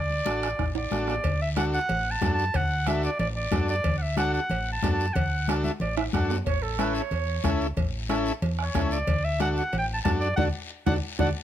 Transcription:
Already playing: D2 D5
0.10 high conga
0.25 A1 D4 F#4 A4, bombo rim, high conga, high timbale, short guiro
0.43 bombo rim, high timbale, short guiro
0.59 A1, bombo low, bombo rim, high conga, high timbale, long guiro
0.75 D5, high timbale
0.91 A1 D4 F#4 A4, bombo rim, high conga, low timbale, short guiro
1.07 D5, bombo rim, low timbale, short guiro
1.24 D2, bombo low, cowbell, long guiro
1.42 E5
1.56 D4 F#4 A4 F#5, bombo rim, cowbell, high conga, short guiro
1.74 F#5, short guiro
1.89 A1, cowbell, low conga, long guiro
2.11 A5
2.21 F#2 D4 F#4 A4, bombo low, bombo rim, cowbell, high conga, low timbale, short guiro
2.34 A5
2.39 short guiro
2.54 D2 F#5, bombo low, cowbell, long guiro
2.87 D4 F#4 A4 E5, bombo rim, cowbell, high conga, short guiro
3.03 D5, short guiro
3.19 A1 D5, cowbell, low conga, long guiro
3.36 D5
3.52 F#2 D4 F#4 A4, bombo low, bombo rim, cowbell, high conga, low timbale, short guiro
3.68 D5, short guiro
3.84 D2, bombo low, cowbell, low conga, long guiro
3.98 F#5
4.02 E5
4.17 D4 F#4 A4 F#5, bombo rim, cowbell, high conga, short guiro
4.34 F#5, short guiro
4.50 A1, cowbell, low conga, long guiro
4.72 A5
4.83 F#2 D4 F#4 A4, bombo low, bombo rim, cowbell, high conga, low timbale, short guiro
4.93 A5
5.00 short guiro
5.14 D2 F#5, bombo low, cowbell, low conga, long guiro
5.48 D4 F#4 A4, bombo rim, cowbell, high conga, short guiro
5.64 E5, high conga, short guiro
5.80 A1 D5, cowbell, low conga, long guiro
5.97 E5, bombo rim, high timbale
6.13 F#2 D4 F#4 A4 F#5, bombo low, bombo rim, cowbell, high conga, short guiro
6.30 low timbale, short guiro
6.45 A1 C#5, bombo low, cowbell, long guiro
6.62 A4
6.79 C#4 E4 A4 B4, bombo rim, cowbell, high conga, short guiro
6.94 C#5, short guiro
7.11 E2, cowbell, low conga, long guiro
7.44 C#2 C#4 E4 A4, bombo low, bombo rim, cowbell, high conga, short guiro
7.61 short guiro
7.77 A1, bombo low, cowbell, low conga, long guiro
8.09 C#4 E4 A4, bombo rim, cowbell, high conga, short guiro
8.26 short guiro
8.42 E2, cowbell, low conga, long guiro
8.59 C#5, bombo rim
8.75 C#2 C#4 E4 A4, bombo low, bombo rim, cowbell, high conga, low timbale, short guiro
8.91 D5, short guiro
9.07 D2, bombo low, cowbell, low conga, long guiro
9.24 E5
9.39 D4 F#4 A4 F#5, bombo rim, cowbell, high conga, short guiro
9.57 F#5, short guiro
9.73 A1, cowbell, low conga, long guiro
9.78 G5
9.94 A5
10.04 F#2 D4 F#4 A4 A5, bombo low, bombo rim, cowbell, high conga, low timbale, short guiro
10.20 D5, short guiro
10.36 D2 D4 F#4 A4 D5 F#5, bombo low, high conga, high timbale, long guiro
10.86 D2 D4 F#4 A4 D5 F#5, bombo low, high conga, high timbale, long guiro
11.19 D2 D4 F#4 A4 D5 F#5, bombo low, high conga, high timbale, long guiro

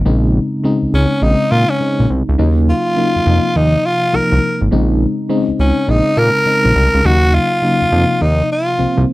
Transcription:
0.05 A#1 C#3 G#3 C4 D#4
0.64 C#3 G#3 C4 D#4
0.82 C#2
0.93 C#2 C#4
1.22 A#1 C#3 G#3 C4 D#4
1.51 A#2 F4
1.70 C#4
1.80 C#3 G#3 C4 D#4
2.00 A#1
2.10 C2
2.29 C#2
2.38 D#2 C#3 F#3 A#3 D#4
2.70 F4
2.96 C#3 F#3 A#3 D#4
3.16 F2
3.26 F2 C3 F3 A#3 D#4
3.56 D#2 D#4
3.86 F4
4.13 C2 C3 F3 A#3 D#4 A#4
4.32 C2
4.61 G#1
4.71 A#1 C#3 G#3 C4 D#4
5.29 C#3 G#3 C4 D#4
5.48 C#2
5.59 C#2 C#4
5.87 A#1 C#3 G#3 C4 D#4
6.17 A#2 A#4
6.46 C#3 G#3 C4 D#4
6.65 A#1
6.76 C2
6.94 C#2
7.04 D#2 C#3 F#3 A#3 D#4 F#4
7.34 F4
7.62 C#3 F#3 A#3 D#4
7.82 F2
7.91 F2 C3 F3 A#3 D#4
8.21 D#2 D#4
8.52 F4
8.78 C2 C3 F3 A#3 C4
8.98 C2

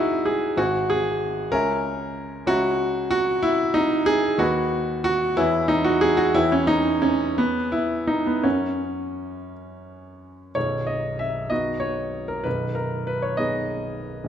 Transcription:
Already playing: C#2 D#4 E4 F#4 G#4 C#5 E5 G#5
0.25 G#4
0.57 G#1 F#4 C5 F#5 G#5
0.90 G#4
1.51 C#2 A#4 C#5 E5 G#5
2.46 C#2 F#4 C#5 E5 A#5
3.11 F#4
3.43 E4
3.74 D#4
4.06 G#4
4.38 D#2 F#4 B4 D#5 B5
5.04 F#4
5.36 E2 E4 B4 C#5 G#5
5.68 D#4
5.84 F#4
6.01 G#4
6.17 F#4
6.34 E2 E4 B4 C#5 G5
6.52 C#4
6.67 D#4
7.02 C#4
7.38 B3
7.72 E4
8.07 D#4
8.26 B3
8.43 F#2 C#4 A#4 C#5 F#5
10.55 B0 B1 C#5
10.87 D#5
11.19 E5
11.50 B3 D#4 F#4 D#5
11.80 C#5
12.28 A#4
12.44 B0 B1 B4
12.75 A#4
13.07 B4
13.22 C#5
13.37 B3 D#4 G#4 D#5
14.24 A#1

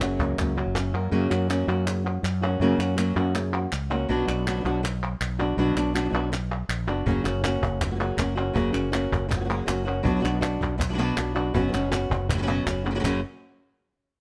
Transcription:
Already playing: F#1 F#2 F#3 F#4
0.01 C#3 F#3 A#3 C#4 F#4, cajon slap, clap
0.19 C#2 A#3, cajon bass
0.37 C#2 C#3 F#3 A#3 C#4 F#4, cajon bass, cajon slap, clap
0.57 F#3 A#3 C#4 F#4, clap
0.66 F#1
0.75 C#4, muted nylon-string guitar stroke, cajon slap, clap
0.93 F#2 A#3 C#4 F#4 A#4
1.12 F#2 C#3 F#3 A#3 C#4 F#4
1.31 F#2 A#3 C#4 F#4, clap
1.49 F#3 A#3 C#4 F#4, muted nylon-string guitar stroke, clap
1.67 F#2 A#3 C#4 F#4, clap
1.86 C#3 F#3 A#3 C#4 F#4, muted nylon-string guitar stroke, clap
2.04 A#3 C#4 F#4
2.23 F#2, muted nylon-string guitar stroke, clap
2.41 A#3 C#4 F#4
2.60 F#2 C#3 F#3 A#3 C#4 F#4
2.78 F#2 A#3 C#4 F#4, clap
2.97 F#3 A#3 C#4 F#4, muted nylon-string guitar stroke, clap
3.16 F#2 A#3 C#4 F#4
3.34 C#3 F#3 A#3 C#4 F#4, muted nylon-string guitar stroke, clap
3.53 A#3 C#4 F#4
3.72 C#2, muted nylon-string guitar stroke, clap
3.90 A#3 C#4 F#4, clap
4.09 B1 B2 F#3 B3 D4 F#4
4.28 B1 B3 D4 F#4, clap
4.46 F#3 B3 D4 F#4, clap
4.56 F#3 B3 D4 F#4
4.60 F#3 B3 D4 F#4
4.64 B1 B2 F#3 B3 D4 F#4
4.83 muted nylon-string guitar stroke, clap
5.03 clap
5.21 B1, clap
5.39 B3 D4 F#4
5.57 B1 B2 F#3 B3 D4 F#4
5.75 B1 B3 D4 F#4, clap
5.94 F#3 B3 D4 F#4, clap
6.00 F#3 B3 D4 F#4
6.05 F#3 B3 D4 F#4
6.09 B1 F#3 B3 D4 F#4
6.13 B2 F#3 B3 D4 F#4
6.32 muted nylon-string guitar stroke, clap
6.69 A#1, clap
6.87 F#1 B3 D4 F#4
7.06 F#1 C#3 F#3 A#3 C#4 F#4, cajon bass
7.24 F#1 A#3 C#4 F#4, clap
7.43 A#3 C#4 F#4, cajon slap, clap
7.61 F#1, cajon bass
7.81 muted nylon-string guitar stroke, cajon bass, cajon slap, clap
7.86 F#3 A#3 C#4 F#4
7.90 F#3 A#3 C#4 F#4
7.95 F#3 A#3 C#4 F#4
8.00 C#3 F#3 A#3 C#4 F#4, clap
8.17 F#1 F#3 A#3 C#4 F#4, cajon bass, cajon slap, clap
8.36 A#3 C#4 F#4
8.55 F#1 C#3 F#3 A#3 C#4 F#4, cajon bass
8.73 F#1 A#3 C#4 F#4, clap
8.93 A#3 C#4 F#4, cajon slap, clap
9.12 F#1, cajon bass, clap
9.30 muted nylon-string guitar stroke, cajon bass, clap
9.35 F#3 A#3 C#4 F#4
9.40 F#3 A#3 C#4 F#4
9.45 F#3 A#3 C#4 F#4
9.49 C#3 F#3 A#3 C#4 F#4, clap
9.67 F#1 F#3 A#3 C#4 F#4, cajon slap, clap
9.86 A#3 C#4 F#4, clap
10.05 B1 B2 F#3 B3 D4 F#4, cajon bass
10.15 F#3 B3 D4 F#4
10.19 F#3 B3 D4 F#4
10.24 B1 B2 F#3 B3 D4 F#4, clap
10.42 B3 D4 F#4, cajon slap, clap
10.61 B1, cajon bass, clap
10.80 muted nylon-string guitar stroke, cajon bass, cajon slap, clap
10.89 F#3 B3 D4 F#4
10.93 F#3 B3 D4 F#4
10.98 B2 F#3 B3 D4 F#4
11.16 B1 F#3 B3 D4 F#4, cajon slap, clap
11.35 B3 D4 F#4
11.53 F#1 B2 F#3 B3 C#4 F#4, cajon bass
11.63 F#3 B3 C#4 F#4
11.68 F#3 B3 C#4 F#4
11.73 F#1 B2 F#3 B3 C#4 F#4, clap
11.91 B3 C#4 F#4, cajon slap, clap
12.10 F#1, cajon bass
12.29 muted nylon-string guitar stroke, cajon bass, clap
12.33 F#3 B3 C#4 F#4
12.38 F#3 B3 C#4 F#4
12.42 F#3 B3 C#4 F#4
12.47 B2 F#3 B3 C#4 F#4
12.66 F#1 F#3 B3 C#4 F#4, cajon bass, cajon slap, clap
12.85 B3 C#4 F#4
12.91 C#3 F#3 A#3 C#4 F#4
12.96 C#3 F#3 A#3 C#4 F#4
13.00 F#1 C#3 F#3 A#3 C#4 F#4
13.04 F#2 C#3 F#3 A#3 C#4 F#4, cajon bass, clap

